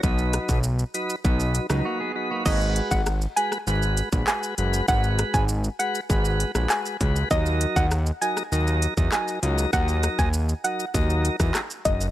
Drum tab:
CC |----------------|x---------------|----------------|----------------|
HH |--x---x---x-----|--x---x---x---x-|--x---x---x---x-|--x---x---x---x-|
SH |xxxxxxxxxxxx----|xxxxxxxxxxxxxxxx|xxxxxxxxxxxxxxxx|xxxxxxxxxxxxxxxx|
CP |----------------|------------x---|------------x---|------------x---|
SD |--r--------r----|----r--r----r---|--r--------rr---|----r--r----r---|
BD |o--o----o-------|o--o-------o----|o--o----o-----o-|o--o-------o----|

CC |----------------|
HH |--x---x---x---x-|
SH |xxxxxxxxxxxxxxxx|
CP |------------x---|
SD |--r--------rr---|
BD |o--o----o--o--o-|